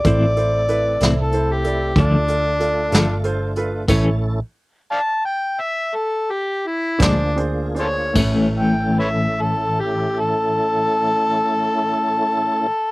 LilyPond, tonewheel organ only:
\new Staff \with { instrumentName = "Tonewheel organ" } { \time 12/8 \key d \dorian \tempo 4. = 57 <a c' e' a'>2. <a d' f' a'>2. | <a cis' e' a'>4 r2. r8 <bes d' f' aes'>4. | <a cis' e' a'>1. | }